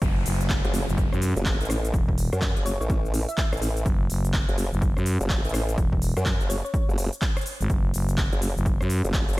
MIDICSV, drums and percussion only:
0, 0, Header, 1, 2, 480
1, 0, Start_track
1, 0, Key_signature, 3, "minor"
1, 0, Tempo, 480000
1, 18, Time_signature, 4, 2, 24, 8
1, 9399, End_track
2, 0, Start_track
2, 0, Title_t, "Drums"
2, 18, Note_on_c, 9, 36, 117
2, 18, Note_on_c, 9, 42, 71
2, 26, Note_on_c, 9, 82, 46
2, 118, Note_off_c, 9, 36, 0
2, 118, Note_off_c, 9, 42, 0
2, 126, Note_off_c, 9, 82, 0
2, 258, Note_on_c, 9, 46, 109
2, 266, Note_on_c, 9, 82, 79
2, 358, Note_off_c, 9, 46, 0
2, 366, Note_off_c, 9, 82, 0
2, 407, Note_on_c, 9, 42, 59
2, 415, Note_on_c, 9, 82, 34
2, 497, Note_on_c, 9, 39, 127
2, 498, Note_off_c, 9, 42, 0
2, 498, Note_on_c, 9, 36, 124
2, 498, Note_on_c, 9, 42, 69
2, 506, Note_off_c, 9, 82, 0
2, 506, Note_on_c, 9, 82, 46
2, 597, Note_off_c, 9, 39, 0
2, 598, Note_off_c, 9, 36, 0
2, 598, Note_off_c, 9, 42, 0
2, 606, Note_off_c, 9, 82, 0
2, 646, Note_on_c, 9, 42, 55
2, 737, Note_on_c, 9, 46, 96
2, 745, Note_on_c, 9, 82, 81
2, 746, Note_off_c, 9, 42, 0
2, 837, Note_off_c, 9, 46, 0
2, 845, Note_off_c, 9, 82, 0
2, 894, Note_on_c, 9, 82, 34
2, 978, Note_on_c, 9, 36, 122
2, 978, Note_on_c, 9, 42, 67
2, 986, Note_off_c, 9, 82, 0
2, 986, Note_on_c, 9, 82, 44
2, 1078, Note_off_c, 9, 36, 0
2, 1078, Note_off_c, 9, 42, 0
2, 1086, Note_off_c, 9, 82, 0
2, 1126, Note_on_c, 9, 37, 59
2, 1134, Note_on_c, 9, 82, 31
2, 1217, Note_on_c, 9, 46, 106
2, 1225, Note_off_c, 9, 82, 0
2, 1225, Note_on_c, 9, 82, 79
2, 1226, Note_off_c, 9, 37, 0
2, 1317, Note_off_c, 9, 46, 0
2, 1325, Note_off_c, 9, 82, 0
2, 1366, Note_on_c, 9, 42, 55
2, 1374, Note_on_c, 9, 82, 33
2, 1456, Note_on_c, 9, 39, 125
2, 1458, Note_off_c, 9, 42, 0
2, 1458, Note_on_c, 9, 36, 124
2, 1458, Note_on_c, 9, 42, 69
2, 1466, Note_off_c, 9, 82, 0
2, 1466, Note_on_c, 9, 82, 45
2, 1556, Note_off_c, 9, 39, 0
2, 1558, Note_off_c, 9, 36, 0
2, 1558, Note_off_c, 9, 42, 0
2, 1566, Note_off_c, 9, 82, 0
2, 1606, Note_on_c, 9, 42, 52
2, 1614, Note_on_c, 9, 82, 33
2, 1652, Note_off_c, 9, 42, 0
2, 1652, Note_on_c, 9, 42, 69
2, 1698, Note_on_c, 9, 37, 78
2, 1698, Note_on_c, 9, 46, 97
2, 1706, Note_off_c, 9, 82, 0
2, 1706, Note_on_c, 9, 82, 81
2, 1752, Note_off_c, 9, 42, 0
2, 1798, Note_off_c, 9, 37, 0
2, 1798, Note_off_c, 9, 46, 0
2, 1806, Note_off_c, 9, 82, 0
2, 1846, Note_on_c, 9, 42, 57
2, 1854, Note_on_c, 9, 82, 34
2, 1937, Note_on_c, 9, 36, 125
2, 1938, Note_off_c, 9, 42, 0
2, 1938, Note_on_c, 9, 42, 69
2, 1946, Note_off_c, 9, 82, 0
2, 1946, Note_on_c, 9, 82, 44
2, 2038, Note_off_c, 9, 36, 0
2, 2038, Note_off_c, 9, 42, 0
2, 2046, Note_off_c, 9, 82, 0
2, 2086, Note_on_c, 9, 36, 65
2, 2178, Note_on_c, 9, 46, 113
2, 2186, Note_off_c, 9, 36, 0
2, 2186, Note_on_c, 9, 82, 77
2, 2278, Note_off_c, 9, 46, 0
2, 2286, Note_off_c, 9, 82, 0
2, 2326, Note_on_c, 9, 37, 62
2, 2326, Note_on_c, 9, 42, 55
2, 2334, Note_on_c, 9, 82, 33
2, 2417, Note_on_c, 9, 39, 127
2, 2418, Note_off_c, 9, 42, 0
2, 2418, Note_on_c, 9, 36, 126
2, 2418, Note_on_c, 9, 42, 68
2, 2426, Note_off_c, 9, 37, 0
2, 2426, Note_off_c, 9, 82, 0
2, 2426, Note_on_c, 9, 82, 44
2, 2517, Note_off_c, 9, 39, 0
2, 2518, Note_off_c, 9, 36, 0
2, 2518, Note_off_c, 9, 42, 0
2, 2526, Note_off_c, 9, 82, 0
2, 2566, Note_on_c, 9, 42, 55
2, 2657, Note_on_c, 9, 46, 98
2, 2665, Note_on_c, 9, 82, 77
2, 2666, Note_off_c, 9, 42, 0
2, 2757, Note_off_c, 9, 46, 0
2, 2765, Note_off_c, 9, 82, 0
2, 2814, Note_on_c, 9, 82, 32
2, 2897, Note_on_c, 9, 42, 65
2, 2898, Note_on_c, 9, 36, 125
2, 2905, Note_off_c, 9, 82, 0
2, 2905, Note_on_c, 9, 82, 43
2, 2997, Note_off_c, 9, 42, 0
2, 2998, Note_off_c, 9, 36, 0
2, 3005, Note_off_c, 9, 82, 0
2, 3054, Note_on_c, 9, 82, 29
2, 3138, Note_on_c, 9, 46, 109
2, 3146, Note_off_c, 9, 82, 0
2, 3146, Note_on_c, 9, 82, 76
2, 3238, Note_off_c, 9, 46, 0
2, 3246, Note_off_c, 9, 82, 0
2, 3286, Note_on_c, 9, 42, 55
2, 3294, Note_on_c, 9, 82, 32
2, 3377, Note_on_c, 9, 39, 124
2, 3378, Note_off_c, 9, 42, 0
2, 3378, Note_on_c, 9, 36, 127
2, 3378, Note_on_c, 9, 42, 68
2, 3386, Note_off_c, 9, 82, 0
2, 3386, Note_on_c, 9, 82, 44
2, 3477, Note_off_c, 9, 39, 0
2, 3478, Note_off_c, 9, 36, 0
2, 3478, Note_off_c, 9, 42, 0
2, 3486, Note_off_c, 9, 82, 0
2, 3526, Note_on_c, 9, 37, 77
2, 3526, Note_on_c, 9, 42, 51
2, 3534, Note_on_c, 9, 82, 31
2, 3572, Note_off_c, 9, 42, 0
2, 3572, Note_on_c, 9, 42, 67
2, 3618, Note_on_c, 9, 46, 102
2, 3626, Note_off_c, 9, 37, 0
2, 3626, Note_off_c, 9, 82, 0
2, 3626, Note_on_c, 9, 82, 78
2, 3672, Note_off_c, 9, 42, 0
2, 3718, Note_off_c, 9, 46, 0
2, 3726, Note_off_c, 9, 82, 0
2, 3766, Note_on_c, 9, 42, 54
2, 3774, Note_on_c, 9, 82, 33
2, 3858, Note_off_c, 9, 42, 0
2, 3858, Note_on_c, 9, 36, 127
2, 3858, Note_on_c, 9, 42, 68
2, 3866, Note_off_c, 9, 82, 0
2, 3866, Note_on_c, 9, 82, 45
2, 3958, Note_off_c, 9, 36, 0
2, 3958, Note_off_c, 9, 42, 0
2, 3966, Note_off_c, 9, 82, 0
2, 4098, Note_on_c, 9, 46, 110
2, 4106, Note_on_c, 9, 82, 75
2, 4198, Note_off_c, 9, 46, 0
2, 4206, Note_off_c, 9, 82, 0
2, 4246, Note_on_c, 9, 42, 53
2, 4254, Note_on_c, 9, 82, 33
2, 4337, Note_on_c, 9, 39, 120
2, 4338, Note_off_c, 9, 42, 0
2, 4338, Note_on_c, 9, 36, 127
2, 4338, Note_on_c, 9, 42, 63
2, 4346, Note_off_c, 9, 82, 0
2, 4346, Note_on_c, 9, 82, 45
2, 4437, Note_off_c, 9, 39, 0
2, 4438, Note_off_c, 9, 36, 0
2, 4438, Note_off_c, 9, 42, 0
2, 4446, Note_off_c, 9, 82, 0
2, 4487, Note_on_c, 9, 42, 52
2, 4578, Note_on_c, 9, 46, 99
2, 4586, Note_on_c, 9, 82, 74
2, 4587, Note_off_c, 9, 42, 0
2, 4678, Note_off_c, 9, 46, 0
2, 4686, Note_off_c, 9, 82, 0
2, 4735, Note_on_c, 9, 82, 33
2, 4818, Note_on_c, 9, 36, 127
2, 4819, Note_on_c, 9, 42, 64
2, 4827, Note_off_c, 9, 82, 0
2, 4827, Note_on_c, 9, 82, 43
2, 4918, Note_off_c, 9, 36, 0
2, 4919, Note_off_c, 9, 42, 0
2, 4927, Note_off_c, 9, 82, 0
2, 4967, Note_on_c, 9, 37, 60
2, 4975, Note_on_c, 9, 82, 29
2, 5059, Note_on_c, 9, 46, 114
2, 5067, Note_off_c, 9, 37, 0
2, 5067, Note_off_c, 9, 82, 0
2, 5067, Note_on_c, 9, 82, 77
2, 5159, Note_off_c, 9, 46, 0
2, 5167, Note_off_c, 9, 82, 0
2, 5207, Note_on_c, 9, 42, 51
2, 5215, Note_on_c, 9, 82, 31
2, 5297, Note_on_c, 9, 39, 124
2, 5298, Note_on_c, 9, 36, 127
2, 5299, Note_off_c, 9, 42, 0
2, 5299, Note_on_c, 9, 42, 65
2, 5307, Note_off_c, 9, 82, 0
2, 5307, Note_on_c, 9, 82, 43
2, 5397, Note_off_c, 9, 39, 0
2, 5398, Note_off_c, 9, 36, 0
2, 5399, Note_off_c, 9, 42, 0
2, 5407, Note_off_c, 9, 82, 0
2, 5447, Note_on_c, 9, 42, 48
2, 5455, Note_on_c, 9, 82, 31
2, 5493, Note_off_c, 9, 42, 0
2, 5493, Note_on_c, 9, 42, 66
2, 5538, Note_on_c, 9, 37, 82
2, 5538, Note_on_c, 9, 46, 101
2, 5546, Note_off_c, 9, 82, 0
2, 5546, Note_on_c, 9, 82, 78
2, 5593, Note_off_c, 9, 42, 0
2, 5638, Note_off_c, 9, 37, 0
2, 5638, Note_off_c, 9, 46, 0
2, 5646, Note_off_c, 9, 82, 0
2, 5687, Note_on_c, 9, 42, 53
2, 5695, Note_on_c, 9, 82, 32
2, 5778, Note_on_c, 9, 36, 124
2, 5779, Note_off_c, 9, 42, 0
2, 5779, Note_on_c, 9, 42, 65
2, 5786, Note_off_c, 9, 82, 0
2, 5786, Note_on_c, 9, 82, 45
2, 5878, Note_off_c, 9, 36, 0
2, 5879, Note_off_c, 9, 42, 0
2, 5886, Note_off_c, 9, 82, 0
2, 5926, Note_on_c, 9, 36, 65
2, 6018, Note_on_c, 9, 46, 112
2, 6026, Note_off_c, 9, 36, 0
2, 6026, Note_on_c, 9, 82, 78
2, 6118, Note_off_c, 9, 46, 0
2, 6126, Note_off_c, 9, 82, 0
2, 6167, Note_on_c, 9, 37, 64
2, 6167, Note_on_c, 9, 42, 52
2, 6175, Note_on_c, 9, 82, 33
2, 6258, Note_on_c, 9, 36, 127
2, 6258, Note_on_c, 9, 39, 121
2, 6259, Note_off_c, 9, 42, 0
2, 6259, Note_on_c, 9, 42, 62
2, 6267, Note_off_c, 9, 37, 0
2, 6267, Note_off_c, 9, 82, 0
2, 6267, Note_on_c, 9, 82, 45
2, 6358, Note_off_c, 9, 36, 0
2, 6358, Note_off_c, 9, 39, 0
2, 6359, Note_off_c, 9, 42, 0
2, 6367, Note_off_c, 9, 82, 0
2, 6407, Note_on_c, 9, 42, 51
2, 6415, Note_on_c, 9, 82, 30
2, 6499, Note_on_c, 9, 46, 98
2, 6507, Note_off_c, 9, 42, 0
2, 6507, Note_off_c, 9, 82, 0
2, 6507, Note_on_c, 9, 82, 77
2, 6599, Note_off_c, 9, 46, 0
2, 6607, Note_off_c, 9, 82, 0
2, 6655, Note_on_c, 9, 82, 32
2, 6738, Note_on_c, 9, 36, 125
2, 6738, Note_on_c, 9, 42, 63
2, 6746, Note_off_c, 9, 82, 0
2, 6746, Note_on_c, 9, 82, 43
2, 6838, Note_off_c, 9, 36, 0
2, 6838, Note_off_c, 9, 42, 0
2, 6846, Note_off_c, 9, 82, 0
2, 6895, Note_on_c, 9, 82, 29
2, 6978, Note_on_c, 9, 46, 113
2, 6986, Note_off_c, 9, 82, 0
2, 6986, Note_on_c, 9, 82, 76
2, 7078, Note_off_c, 9, 46, 0
2, 7086, Note_off_c, 9, 82, 0
2, 7127, Note_on_c, 9, 42, 51
2, 7135, Note_on_c, 9, 82, 33
2, 7217, Note_on_c, 9, 39, 120
2, 7218, Note_off_c, 9, 42, 0
2, 7218, Note_on_c, 9, 36, 126
2, 7218, Note_on_c, 9, 42, 65
2, 7226, Note_off_c, 9, 82, 0
2, 7226, Note_on_c, 9, 82, 43
2, 7317, Note_off_c, 9, 39, 0
2, 7318, Note_off_c, 9, 36, 0
2, 7318, Note_off_c, 9, 42, 0
2, 7326, Note_off_c, 9, 82, 0
2, 7367, Note_on_c, 9, 37, 83
2, 7367, Note_on_c, 9, 42, 48
2, 7375, Note_on_c, 9, 82, 31
2, 7413, Note_off_c, 9, 42, 0
2, 7413, Note_on_c, 9, 42, 61
2, 7458, Note_on_c, 9, 46, 98
2, 7466, Note_off_c, 9, 82, 0
2, 7466, Note_on_c, 9, 82, 77
2, 7467, Note_off_c, 9, 37, 0
2, 7513, Note_off_c, 9, 42, 0
2, 7558, Note_off_c, 9, 46, 0
2, 7566, Note_off_c, 9, 82, 0
2, 7607, Note_on_c, 9, 42, 50
2, 7615, Note_on_c, 9, 82, 33
2, 7698, Note_off_c, 9, 42, 0
2, 7698, Note_on_c, 9, 36, 118
2, 7698, Note_on_c, 9, 42, 65
2, 7706, Note_off_c, 9, 82, 0
2, 7706, Note_on_c, 9, 82, 47
2, 7798, Note_off_c, 9, 36, 0
2, 7798, Note_off_c, 9, 42, 0
2, 7806, Note_off_c, 9, 82, 0
2, 7938, Note_on_c, 9, 46, 108
2, 7946, Note_on_c, 9, 82, 80
2, 8038, Note_off_c, 9, 46, 0
2, 8046, Note_off_c, 9, 82, 0
2, 8087, Note_on_c, 9, 42, 52
2, 8095, Note_on_c, 9, 82, 35
2, 8177, Note_on_c, 9, 39, 115
2, 8178, Note_on_c, 9, 36, 122
2, 8179, Note_off_c, 9, 42, 0
2, 8179, Note_on_c, 9, 42, 64
2, 8187, Note_off_c, 9, 82, 0
2, 8187, Note_on_c, 9, 82, 46
2, 8278, Note_off_c, 9, 36, 0
2, 8278, Note_off_c, 9, 39, 0
2, 8279, Note_off_c, 9, 42, 0
2, 8287, Note_off_c, 9, 82, 0
2, 8327, Note_on_c, 9, 42, 52
2, 8418, Note_on_c, 9, 46, 96
2, 8426, Note_on_c, 9, 82, 82
2, 8427, Note_off_c, 9, 42, 0
2, 8518, Note_off_c, 9, 46, 0
2, 8526, Note_off_c, 9, 82, 0
2, 8575, Note_on_c, 9, 82, 34
2, 8658, Note_on_c, 9, 36, 121
2, 8658, Note_on_c, 9, 42, 63
2, 8666, Note_off_c, 9, 82, 0
2, 8666, Note_on_c, 9, 82, 45
2, 8758, Note_off_c, 9, 36, 0
2, 8758, Note_off_c, 9, 42, 0
2, 8766, Note_off_c, 9, 82, 0
2, 8807, Note_on_c, 9, 37, 66
2, 8815, Note_on_c, 9, 82, 32
2, 8898, Note_on_c, 9, 46, 108
2, 8906, Note_off_c, 9, 82, 0
2, 8906, Note_on_c, 9, 82, 78
2, 8907, Note_off_c, 9, 37, 0
2, 8998, Note_off_c, 9, 46, 0
2, 9006, Note_off_c, 9, 82, 0
2, 9047, Note_on_c, 9, 42, 51
2, 9055, Note_on_c, 9, 82, 35
2, 9137, Note_on_c, 9, 39, 113
2, 9138, Note_off_c, 9, 42, 0
2, 9138, Note_on_c, 9, 36, 123
2, 9138, Note_on_c, 9, 42, 64
2, 9146, Note_off_c, 9, 82, 0
2, 9146, Note_on_c, 9, 82, 47
2, 9237, Note_off_c, 9, 39, 0
2, 9238, Note_off_c, 9, 36, 0
2, 9238, Note_off_c, 9, 42, 0
2, 9246, Note_off_c, 9, 82, 0
2, 9287, Note_on_c, 9, 42, 48
2, 9295, Note_on_c, 9, 82, 32
2, 9332, Note_off_c, 9, 42, 0
2, 9332, Note_on_c, 9, 42, 62
2, 9395, Note_off_c, 9, 82, 0
2, 9399, Note_off_c, 9, 42, 0
2, 9399, End_track
0, 0, End_of_file